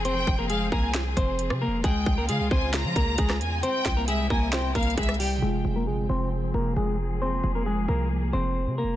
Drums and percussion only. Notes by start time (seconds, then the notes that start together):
0.05 closed hi-hat
0.27 kick
0.50 closed hi-hat
0.72 kick
0.94 snare, closed hi-hat
1.17 kick, closed hi-hat
1.39 closed hi-hat
1.50 cross-stick
1.84 kick, closed hi-hat
2.06 kick
2.29 closed hi-hat
2.51 kick
2.74 snare, closed hi-hat
2.96 kick, closed hi-hat
3.18 kick, closed hi-hat
3.30 cross-stick, snare
3.41 closed hi-hat
3.63 closed hi-hat
3.86 kick, snare
4.08 closed hi-hat
4.30 kick
4.53 snare, closed hi-hat
4.75 kick, closed hi-hat
4.83 closed hi-hat
4.90 closed hi-hat
4.98 kick, closed hi-hat
5.03 closed hi-hat
5.09 cross-stick, closed hi-hat
5.14 closed hi-hat
5.20 open hi-hat